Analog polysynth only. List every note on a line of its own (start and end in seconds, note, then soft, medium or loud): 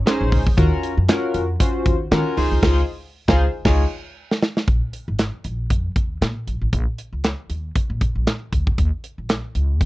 0.06 0.42 C#4 medium
0.06 0.42 D#4 medium
0.06 0.43 G#4 medium
0.06 0.43 C5 loud
0.57 0.94 C#4 medium
0.57 0.94 F4 medium
0.57 0.94 F#4 medium
0.57 0.94 A#4 loud
1.08 1.45 C#4 loud
1.08 1.45 F4 medium
1.08 1.45 F#4 loud
1.08 1.45 A#4 loud
1.60 1.96 C#4 medium
1.60 1.96 F4 medium
1.60 1.96 F#4 medium
1.60 1.97 C5 medium
2.11 2.37 C#4 loud
2.11 2.36 F4 medium
2.11 2.37 F#4 medium
2.11 2.37 A#4 loud
2.37 2.61 D#4 loud
2.37 2.62 F4 medium
2.37 2.62 G#4 medium
2.37 2.62 C5 loud
2.62 2.81 D#4 loud
2.62 2.81 F4 loud
2.62 2.81 G#4 loud
2.62 2.81 C5 loud
3.28 3.45 D#4 loud
3.28 3.45 F4 loud
3.28 3.45 G#4 loud
3.28 3.45 C5 loud
3.65 3.83 D#4 loud
3.65 3.83 F4 loud
3.65 3.83 G#4 loud
3.65 3.84 C#5 loud